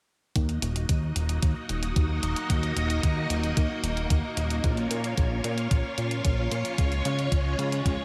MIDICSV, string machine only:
0, 0, Header, 1, 2, 480
1, 0, Start_track
1, 0, Key_signature, -6, "minor"
1, 0, Tempo, 535714
1, 319, Time_signature, 4, 2, 24, 8
1, 7211, End_track
2, 0, Start_track
2, 0, Title_t, "String machine"
2, 0, Program_c, 0, 50
2, 315, Note_on_c, 0, 58, 85
2, 316, Note_on_c, 0, 63, 75
2, 316, Note_on_c, 0, 66, 76
2, 317, Note_on_c, 0, 75, 88
2, 4121, Note_off_c, 0, 66, 0
2, 4122, Note_off_c, 0, 63, 0
2, 4122, Note_off_c, 0, 75, 0
2, 4155, Note_on_c, 0, 65, 75
2, 4155, Note_on_c, 0, 73, 89
2, 4157, Note_on_c, 0, 61, 74
2, 6041, Note_off_c, 0, 58, 0
2, 6080, Note_on_c, 0, 56, 80
2, 7211, Note_off_c, 0, 56, 0
2, 7211, Note_off_c, 0, 61, 0
2, 7211, Note_off_c, 0, 65, 0
2, 7211, Note_off_c, 0, 73, 0
2, 7211, End_track
0, 0, End_of_file